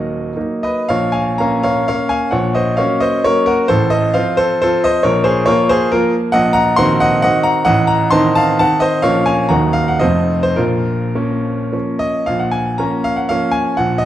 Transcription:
Already playing: D#1 D#2 F#3 A#3 D#4 A#4 D#5
0.36 F#3 A#3 D#4
0.63 B4 D#5
0.89 A#1 A#2 C#5 F5
1.12 F5 G#5
1.38 A#3 C#4 F5 A#5
1.63 C#5 F5
1.88 A#3 C#4 C#5 F5
2.09 F5 G#5
2.31 A#1 A#2 C#5 F#5
2.55 C5 D#5
2.77 F#3 A#3 C#4 C#5 F5
3.00 C5 D#5
3.24 F#3 A#3 C#4 A#4 C#5
3.46 F#4 A#4
3.68 A1 A2 A4 C5
3.90 C5 D#5
4.14 F3 C4 F4 C5 F5
4.37 A4 C5
4.62 F3 C4 F4 A4 C5
4.84 C5 D#5
5.03 A#1 A#2 A#4 C#5
5.24 G#4 C5
5.46 F3 A#3 F4 A#4 C#5
5.69 G#4 C5
5.92 F3 A#3 F4 A#4
6.32 A#1 A#2 D#5 F#5
6.53 F#5 A#5
6.76 D#3 C4 F#4 F#5 C6
7.00 D#5 F#5
7.22 D#3 C4 F#4 D#5 F#5
7.43 F#5 A#5
7.65 A1 A2 D#5 F#5
7.87 F#5 A#5
8.11 D#3 C4 D#4 A5 C6
8.35 F5 A5
8.59 D#3 C4 D#4 F#5 A5
8.80 C5 D#5
9.02 A#1 A#2 F3 A#3 C#4 C#5 F5
9.26 F5 G#5
9.49 D#1 D#2 F#3 A#3 D#4 F#5 A#5
9.73 F5
9.88 F#5
9.99 F1 F2 F3 A3 C4 C5 D#5
10.43 C5
10.56 A#1 A#2 F4 A#4
11.15 F3 A#3 C#4
11.73 F3 A#3 C#4
11.99 D#5
12.26 A#1 A#2 F5
12.39 F#5
12.51 G#5
12.78 F3 A#3 C#4 A#5
13.04 F5
13.16 F#5
13.29 F3 A#3 C#4 F5
13.51 G#5
13.77 A#1 A#2 F#5
13.98 D#5

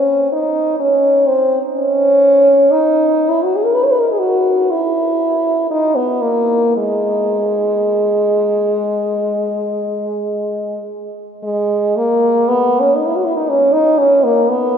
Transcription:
Already playing: C#4
0.32 D#4
0.79 C#4
1.27 C4
1.76 C#4
2.71 D#4
3.29 E4
3.44 F#4
3.56 G#4
3.65 A#4
3.74 B4
3.84 C#5
3.91 B4
4.00 A#4
4.12 G#4
4.19 F#4
4.71 E4
5.71 D#4
5.95 B3
6.22 A#3
6.77 G#3
11.43 G#3
11.97 A#3
12.48 B3
12.80 C#4
12.96 D#4
13.06 E4
13.16 F#4
13.25 E4
13.36 D#4
13.49 C#4
13.73 D#4
13.98 C#4
14.24 A#3
14.49 B3

